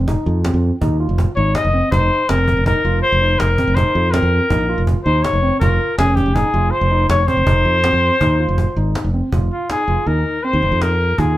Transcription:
0.00 fingered electric bass F1
0.08 tine electric piano D#4, cajon bass
0.26 fingered electric bass F2, cajon slap
0.44 tine electric piano C4, cajon slap
0.54 fingered electric bass F2
0.63 cajon slap
0.81 fingered electric bass D#2, tine electric piano D#4, cajon bass
1.00 tine electric piano F4, cajon slap
1.09 fingered electric bass F1
1.18 cajon bass
1.36 fingered electric bass G#1, tine electric piano D#4, trumpet C#5, cajon slap
1.55 trumpet D#5, cajon slap
1.65 fingered electric bass F1
1.73 tine electric piano C4, cajon slap
1.91 fingered electric bass F1, tine electric piano D#4, trumpet C5, cajon bass
2.29 fingered electric bass F1, tine electric piano C4, trumpet A#4, cajon slap
2.48 cajon bass
2.57 fingered electric bass F1
2.66 tine electric piano D#4, trumpet A#4, cajon bass
2.85 fingered electric bass F1, tine electric piano F4, cajon slap
3.02 trumpet C5, cajon slap
3.12 fingered electric bass F1
3.22 tine electric piano D#4, cajon slap
3.39 fingered electric bass F1, trumpet A#4, cajon slap
3.58 tine electric piano C4, cajon bass
3.67 fingered electric bass F1
3.75 tine electric piano D#4, trumpet C5, cajon bass
3.95 fingered electric bass F2, cajon slap
4.11 tine electric piano C4, trumpet A#4, cajon slap
4.22 fingered electric bass F2
4.33 cajon slap
4.50 fingered electric bass A#1, tine electric piano D#4, cajon bass
4.69 tine electric piano F4, cajon slap
4.78 fingered electric bass F1
4.87 cajon bass
5.04 fingered electric bass D#2, tine electric piano D#4, trumpet C5, cajon slap
5.23 trumpet C#5, cajon slap
5.33 fingered electric bass F1
5.43 tine electric piano C4, cajon slap
5.60 fingered electric bass F1, tine electric piano F4, trumpet A#4, cajon bass
5.80 cajon slap
5.98 fingered electric bass F1, tine electric piano C#4, trumpet G#4, cajon slap
6.15 trumpet G4, cajon bass, cajon slap
6.26 fingered electric bass F1
6.35 tine electric piano D#4, trumpet G#4, cajon bass
6.54 fingered electric bass F1, tine electric piano F4
6.71 trumpet C5, cajon slap
6.81 fingered electric bass F1
6.91 tine electric piano D#4, cajon slap
7.09 fingered electric bass F1, trumpet C#5, cajon slap
7.27 tine electric piano C4, trumpet C5, cajon bass
7.37 fingered electric bass F1
7.47 fingered electric bass F1, tine electric piano D#4, cajon bass
7.65 fingered electric bass F2, cajon slap
7.84 tine electric piano C4, cajon slap
7.93 fingered electric bass F2
8.03 cajon slap
8.21 fingered electric bass D#2, tine electric piano D#4, cajon bass
8.39 tine electric piano F4, cajon slap
8.48 fingered electric bass F1
8.58 cajon bass
8.76 fingered electric bass G#1, tine electric piano D#4, cajon slap
8.95 cajon slap
9.04 fingered electric bass F1
9.14 tine electric piano C4, cajon slap
9.32 fingered electric bass F1, tine electric piano F4, cajon bass
9.51 trumpet F4, cajon slap
9.70 tine electric piano D#4, trumpet G#4, cajon slap
9.88 fingered electric bass F1, tine electric piano F4, cajon slap
10.06 fingered electric bass D#2, tine electric piano D#4, trumpet A#4, cajon slap
10.26 cajon slap
10.43 tine electric piano C4, trumpet C5, cajon slap
10.53 fingered electric bass D#2
10.62 fingered electric bass F1, tine electric piano D#4
10.72 fingered electric bass F2
10.81 trumpet A#4, cajon slap
11.00 cajon slap
11.18 fingered electric bass D#2, tine electric piano F4, trumpet G#4, cajon bass

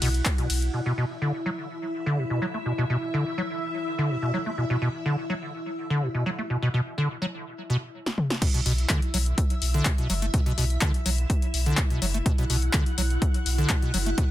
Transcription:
Already playing: string machine E4 F#5
0.02 sub bass B1, acid bass B2, open hi-hat, ride
0.14 closed hi-hat
0.25 kick, clap, closed hi-hat, ride
0.38 acid bass B2, closed hi-hat
0.50 sub bass B1, open hi-hat, ride
0.62 closed hi-hat
0.74 acid bass B2, string machine E4 E5
0.86 acid bass B2
0.98 acid bass B2
1.22 acid bass D3
1.46 acid bass F#3
2.06 acid bass D3
2.18 acid bass B2
2.30 acid bass B2
2.42 acid bass F#3
2.54 acid bass A3
2.66 acid bass B2
2.78 acid bass B2
2.90 acid bass B2
3.14 acid bass D3
3.38 acid bass F#3
3.98 acid bass D3
4.10 acid bass B2
4.22 acid bass B2
4.34 acid bass F#3
4.46 acid bass A3
4.58 acid bass B2
4.70 acid bass B2
4.82 acid bass B2
5.06 acid bass D3
5.30 acid bass F#3
5.90 acid bass D3
6.02 acid bass B2
6.14 acid bass B2
6.26 acid bass F#3
6.38 acid bass A3
6.50 acid bass B2
6.62 acid bass B2
6.74 acid bass B2
6.98 acid bass D3
7.22 acid bass F#3
7.70 acid bass B2
8.06 snare
8.18 mid tom
8.30 snare
8.42 acid bass B2, string machine E4 E5, kick, closed hi-hat, crash
8.54 acid bass B2, closed hi-hat
8.66 sub bass B1, acid bass B2, open hi-hat
8.78 closed hi-hat
8.89 acid bass D3, kick, clap, closed hi-hat
9.02 closed hi-hat
9.14 sub bass B1, acid bass F#3, open hi-hat
9.26 closed hi-hat
9.38 kick, closed hi-hat
9.50 closed hi-hat
9.62 sub bass B1, open hi-hat
9.74 acid bass D3, closed hi-hat
9.85 acid bass B2, kick, clap, closed hi-hat
9.98 acid bass B2, closed hi-hat
10.09 sub bass F#1, acid bass F#3, open hi-hat
10.22 acid bass A3, closed hi-hat
10.34 acid bass B2, kick, closed hi-hat
10.46 acid bass B2, closed hi-hat
10.58 sub bass B1, acid bass B2, open hi-hat
10.70 closed hi-hat
10.81 acid bass D3, kick, clap, closed hi-hat
10.94 closed hi-hat
11.06 sub bass B1, acid bass F#3, open hi-hat
11.18 closed hi-hat
11.30 kick, closed hi-hat
11.42 closed hi-hat
11.54 sub bass B1, open hi-hat
11.66 acid bass D3, closed hi-hat
11.77 acid bass B2, kick, clap, closed hi-hat
11.90 acid bass B2, closed hi-hat
12.02 sub bass F#1, acid bass F#3, open hi-hat
12.14 acid bass A3, closed hi-hat
12.26 acid bass B2, string machine F#5, kick, closed hi-hat
12.38 acid bass B2, closed hi-hat
12.50 sub bass B1, acid bass B2, open hi-hat
12.62 closed hi-hat
12.73 acid bass D3, kick, clap, closed hi-hat
12.86 closed hi-hat
12.98 sub bass B1, acid bass F#3, open hi-hat
13.10 closed hi-hat
13.22 kick, closed hi-hat
13.34 closed hi-hat
13.46 sub bass B1, open hi-hat
13.58 acid bass D3, closed hi-hat
13.69 acid bass B2, kick, clap, closed hi-hat
13.82 acid bass B2, closed hi-hat
13.94 sub bass F#1, acid bass F#3, open hi-hat
14.06 acid bass A3, closed hi-hat
14.18 acid bass B2, kick, closed hi-hat

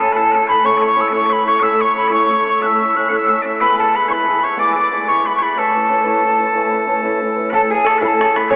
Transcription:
0.00 steel-string acoustic guitar A3 C#4 E4 A4, bagpipes A4, tin whistle A5
0.12 steel-string acoustic guitar A4, bagpipes B4, tin whistle A5
0.17 steel-string acoustic guitar A2 A3 C#4 E4, bagpipes A4
0.31 steel-string acoustic guitar A3 C#4 E4, bagpipes A4 B4
0.37 steel-string acoustic guitar A4
0.47 steel-string acoustic guitar C#4 E4 A4, bagpipes B4 C#5, tin whistle B5
0.63 steel-string acoustic guitar A2 A3 C#4 E4 A4, bagpipes C#5, tin whistle C#6
0.77 bagpipes E5
0.82 steel-string acoustic guitar C#4 E4 A4, bagpipes C#5
0.86 tin whistle C#6
0.95 steel-string acoustic guitar A3 C#4 E4 A4
1.01 tin whistle E6
1.08 steel-string acoustic guitar E4 A4, bagpipes C#5 E5
1.12 steel-string acoustic guitar A2 A3 C#4, tin whistle C#6
1.26 steel-string acoustic guitar A3 C#4 E4, bagpipes B4 E5
1.30 steel-string acoustic guitar A4, tin whistle B5
1.45 steel-string acoustic guitar C#4 E4 A4, bagpipes C#5, tin whistle C#6
1.60 steel-string acoustic guitar A2 A3 C#4 E4 A4, bagpipes E5 F#5, tin whistle E6
1.77 steel-string acoustic guitar C#4 E4 A4, bagpipes C#5
1.81 tin whistle C#6
1.93 steel-string acoustic guitar A3 C#4 E4 A4
1.97 tin whistle B5
2.08 steel-string acoustic guitar A3 C#4 E4 A4, bagpipes E5
2.12 steel-string acoustic guitar A2, bagpipes C#5, tin whistle C#6
2.28 steel-string acoustic guitar A3 C#4 E4
2.44 steel-string acoustic guitar C#4 E4 A4, tin whistle C#6
2.61 steel-string acoustic guitar A2 A3 C#4 E4 A4, bagpipes E5, tin whistle F#6
2.67 tin whistle E6
2.78 steel-string acoustic guitar C#4 E4 A4
2.94 steel-string acoustic guitar A3 C#4 E4 A4, tin whistle F#6
3.09 steel-string acoustic guitar A2 A3 C#4 E4 A4, bagpipes E5 F#5
3.13 tin whistle F#6
3.17 tin whistle E6
3.26 steel-string acoustic guitar A3 C#4 E4, bagpipes E5 F#5
3.31 steel-string acoustic guitar A4
3.42 steel-string acoustic guitar C#4 E4 A4, bagpipes D5 E5
3.60 steel-string acoustic guitar G#3 B3 E4 G#4, bagpipes B4, tin whistle B5
3.78 steel-string acoustic guitar B3 E4 G#4, bagpipes A4, tin whistle A5
3.92 steel-string acoustic guitar G#3 B3 E4 G#4, bagpipes B4, tin whistle B5
4.08 steel-string acoustic guitar G#3 B3 E4 G#4, bagpipes B4 C#5, tin whistle C#6
4.13 tin whistle B5
4.26 steel-string acoustic guitar G#3 B3 E4 G#4
4.40 steel-string acoustic guitar B3 E4 G#4, bagpipes C#5, tin whistle C#6
4.56 steel-string acoustic guitar G#3 B3 E4 G#4, bagpipes D5, tin whistle D6
4.73 steel-string acoustic guitar E4 G#4, bagpipes D5 E5
4.78 steel-string acoustic guitar B3, tin whistle D6
4.90 steel-string acoustic guitar G#3 B3 E4 G#4
5.06 steel-string acoustic guitar G#3 B3 E4 G#4, bagpipes C#5, tin whistle C#6
5.24 steel-string acoustic guitar G#3 B3 E4 G#4, bagpipes B4, tin whistle B5
5.36 bagpipes C#5, tin whistle C#6
5.40 steel-string acoustic guitar B3 E4 G#4, bagpipes B4, tin whistle B5
5.56 steel-string acoustic guitar A3 C#4 E4 B4, bagpipes A4, tin whistle A5
5.74 steel-string acoustic guitar C#4 E4 B4
5.88 steel-string acoustic guitar A3 C#4 E4 B4
6.04 steel-string acoustic guitar A3 C#4 E4 B4
6.23 steel-string acoustic guitar A3 C#4 B4
6.38 steel-string acoustic guitar C#4 E4 B4
6.54 steel-string acoustic guitar A3 C#4 E4 B4
6.71 steel-string acoustic guitar C#4 E4 B4
6.85 steel-string acoustic guitar A3 C#4 E4 B4
7.02 steel-string acoustic guitar A3 C#4 E4 B4
7.21 steel-string acoustic guitar A3 C#4 E4 B4
7.36 steel-string acoustic guitar C#4 E4 B4
7.50 steel-string acoustic guitar A2 A3 C#4 E4, five-string banjo A4, bagpipes B4, bodhran
7.54 steel-string acoustic guitar A4, bagpipes A4, tin whistle A5
7.70 steel-string acoustic guitar C#4 E4 A4, five-string banjo G#4, bagpipes G#4
7.74 tin whistle G#5
7.84 steel-string acoustic guitar A3 E4, five-string banjo A4, bagpipes A4, tin whistle A5, bodhran
7.89 steel-string acoustic guitar A4
7.94 bagpipes B4, bodhran
8.01 steel-string acoustic guitar A2 A3 C#4 E4 A4, five-string banjo A4, bagpipes A4, tin whistle B5, bodhran
8.08 tin whistle A5
8.19 steel-string acoustic guitar A3 C#4 E4 A4, bodhran
8.36 steel-string acoustic guitar C#4 E4, bagpipes B4, tin whistle B5, bodhran
8.49 steel-string acoustic guitar A2 A3 C#4 E4 A4, five-string banjo C#5, bagpipes C#5 E5, bodhran

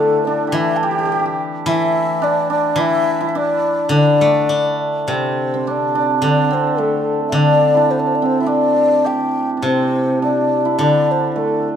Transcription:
Already playing: guzheng D3, hammered dulcimer A3 C4 D4 E4 G4, xiao A4
0.25 hammered dulcimer D4, xiao D5
0.47 hammered dulcimer G4
0.52 guzheng E3, hammered dulcimer E4, xiao E5
0.77 xiao A5
0.83 hammered dulcimer G4, xiao G5
0.91 hammered dulcimer G4
0.99 hammered dulcimer G4
1.05 hammered dulcimer G4
1.12 hammered dulcimer G4
1.19 hammered dulcimer G4
1.25 hammered dulcimer G4
1.66 guzheng E3, hammered dulcimer E4, xiao E5
2.22 hammered dulcimer D4, xiao D5
2.50 hammered dulcimer D4, xiao D5
2.76 guzheng E3, hammered dulcimer E4
2.80 xiao E5
3.21 hammered dulcimer E4
3.29 xiao E5
3.35 hammered dulcimer D4, xiao D5
3.89 guzheng D3, hammered dulcimer D4
3.97 xiao D5
4.21 guzheng A3
4.49 guzheng D4
5.08 guzheng C3, hammered dulcimer C4
5.12 xiao C5
5.54 hammered dulcimer C4
5.67 hammered dulcimer D4, xiao D5
5.95 hammered dulcimer D4, xiao D5
6.22 guzheng D3, hammered dulcimer D4, xiao D5
6.51 hammered dulcimer C4, xiao C5
6.78 hammered dulcimer A3, xiao A4
7.29 guzheng D3, xiao E5
7.34 hammered dulcimer D4, xiao D5
7.74 hammered dulcimer D4 E4
7.91 xiao C5
8.00 xiao D5
8.07 xiao C5
8.15 xiao D5
8.22 hammered dulcimer C4, xiao C5
8.40 hammered dulcimer E4, xiao E5
8.46 hammered dulcimer D4, xiao D5
9.04 hammered dulcimer G4, xiao G5
9.57 hammered dulcimer D4
9.62 guzheng C3, hammered dulcimer C4, xiao C5
10.22 hammered dulcimer D4, xiao D5
10.65 hammered dulcimer E4
10.79 guzheng D3, hammered dulcimer D4, xiao D5
11.11 xiao C5
11.32 hammered dulcimer A3, xiao C5
11.38 xiao A4

